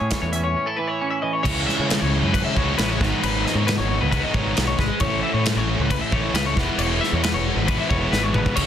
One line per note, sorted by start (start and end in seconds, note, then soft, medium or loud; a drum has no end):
0.00 1.42 A2 medium
0.00 0.11 A2 medium
0.00 0.34 C#4 medium
0.00 1.43 G#4 medium
0.00 0.21 C#5 medium
0.11 0.77 E3 medium
0.11 kick loud
0.11 snare loud
0.11 closed hi-hat medium
0.22 0.54 E2 medium
0.22 0.32 C#5 medium
0.33 0.55 C#4 medium
0.33 0.43 E5 medium
0.33 closed hi-hat medium
0.44 0.67 C#5 medium
0.56 0.67 C#4 medium
0.66 1.45 E4 medium
0.66 0.78 A4 medium
0.77 1.21 E3 medium
0.77 0.87 B4 medium
0.87 1.10 C#5 medium
1.01 1.43 C#4 medium
1.11 1.22 E5 medium
1.22 3.23 E3 medium
1.22 1.33 D#5 medium
1.33 1.42 C#5 medium
1.43 1.66 C#2 loud
1.43 2.55 C#3 loud
1.43 2.58 G#3 loud
1.43 2.56 C#4 loud
1.43 1.66 C#5 loud
1.43 kick loud
1.43 crash loud
1.43 crash medium
1.48 2.55 E4 loud
1.67 1.77 E5 medium
1.67 snare soft
1.77 2.00 C#3 medium
1.77 1.88 C#5 medium
1.88 2.00 B4 medium
1.88 snare loud
1.88 crash medium
2.00 2.22 C#2 medium
2.00 2.23 C#5 medium
2.23 2.44 F#2 medium
2.23 2.32 B4 medium
2.34 2.44 B4 medium
2.34 kick medium
2.34 crash medium
2.45 2.56 E5 medium
2.56 2.77 C#2 medium
2.56 2.78 C#3 medium
2.56 2.80 G#3 medium
2.56 2.78 C#4 medium
2.56 2.77 E4 medium
2.56 2.78 C#5 medium
2.56 kick medium
2.78 2.99 A1 medium
2.78 3.00 C#3 medium
2.78 3.03 G#3 medium
2.78 3.01 C#4 medium
2.78 2.89 B4 medium
2.78 snare loud
2.78 crash medium
2.82 3.01 E4 medium
2.89 3.00 C#5 medium
3.00 3.11 G#1 medium
3.00 4.10 G#2 medium
3.00 4.11 D#3 medium
3.00 4.13 G#3 medium
3.00 4.12 B3 loud
3.00 3.22 B4 medium
3.00 kick loud
3.00 snare soft
3.04 4.12 D#4 loud
3.23 3.44 G#1 loud
3.23 3.45 B4 medium
3.23 crash medium
3.45 3.55 D#5 medium
3.45 snare soft
3.55 3.76 G#2 medium
3.55 3.67 C#5 medium
3.67 3.77 B4 medium
3.67 snare loud
3.67 crash medium
3.78 4.00 G#1 loud
3.78 4.00 C#5 medium
4.01 4.22 C#2 loud
4.01 4.10 B4 medium
4.11 4.33 G#2 medium
4.11 4.33 D#3 medium
4.11 4.35 G#3 loud
4.11 4.34 B3 medium
4.11 4.23 B4 medium
4.11 kick medium
4.11 crash medium
4.16 4.33 D#4 medium
4.23 4.34 D#5 medium
4.34 4.55 G#1 loud
4.34 4.79 G#2 medium
4.34 4.79 D#3 medium
4.34 5.02 G#3 medium
4.34 4.78 B3 medium
4.34 4.77 D#4 medium
4.34 4.56 C#5 medium
4.34 kick medium
4.56 4.78 B1 loud
4.56 4.67 B4 medium
4.56 snare loud
4.56 crash medium
4.67 4.79 C#5 medium
4.79 4.89 G#1 medium
4.79 5.00 B4 medium
4.79 kick medium
4.79 snare soft
5.00 5.22 A1 loud
5.00 6.10 A2 loud
5.00 6.14 E3 loud
5.00 6.11 A3 loud
5.00 6.12 C#4 loud
5.00 6.11 E4 loud
5.00 5.22 C#5 medium
5.00 kick loud
5.00 crash medium
5.23 5.33 E5 medium
5.33 5.55 A2 medium
5.33 5.45 C#5 medium
5.45 5.57 B4 medium
5.45 snare loud
5.45 crash medium
5.56 5.77 A1 medium
5.56 5.80 C#5 medium
5.79 6.00 C#2 medium
5.79 5.90 B4 medium
5.90 6.01 B4 medium
5.90 kick medium
5.90 crash medium
6.01 6.12 E5 medium
6.12 6.33 A1 medium
6.12 6.33 A2 medium
6.12 6.34 E3 medium
6.12 6.34 A3 medium
6.12 6.36 C#4 medium
6.12 6.37 E4 medium
6.12 6.34 C#5 medium
6.12 kick loud
6.33 6.55 C#2 medium
6.33 6.55 A2 medium
6.33 6.55 E3 medium
6.33 6.56 A3 medium
6.33 6.58 C#4 medium
6.33 6.46 B4 medium
6.33 snare loud
6.33 crash medium
6.38 6.59 E4 medium
6.46 6.57 C#5 medium
6.55 6.67 E1 medium
6.55 7.65 E3 loud
6.55 7.67 G#3 loud
6.55 7.69 B3 loud
6.55 6.79 B4 medium
6.55 kick loud
6.55 snare soft
6.59 7.68 E4 loud
6.78 6.99 E1 loud
6.78 7.00 C#5 medium
6.78 crash medium
7.01 7.13 E5 medium
7.01 snare soft
7.13 7.33 E2 medium
7.13 7.23 C#5 medium
7.24 7.34 B4 medium
7.24 snare loud
7.24 crash medium
7.34 7.55 E1 loud
7.34 7.57 C#5 medium
7.56 7.77 G#1 loud
7.56 7.67 B4 medium
7.66 7.88 E3 medium
7.66 7.91 G#3 medium
7.66 7.89 B3 medium
7.66 7.79 B4 medium
7.66 kick medium
7.66 crash medium
7.71 7.87 E4 medium
7.80 7.89 E5 medium
7.89 8.11 E1 loud
7.89 8.34 E3 medium
7.89 8.56 G#3 medium
7.89 8.57 B3 medium
7.89 8.33 E4 medium
7.89 8.12 C#5 medium
7.89 kick loud
8.12 8.33 G#1 medium
8.12 8.23 B4 medium
8.12 snare medium
8.23 8.34 C#5 medium
8.34 8.46 G#1 medium
8.34 8.55 B4 medium
8.34 mid tom loud
8.46 kick medium
8.55 8.66 C#2 loud
8.55 8.66 C#3 loud
8.55 8.66 G#3 loud
8.55 8.66 C#4 loud
8.55 8.66 E4 loud
8.55 8.66 C#5 medium
8.55 kick medium
8.55 crash loud
8.55 crash medium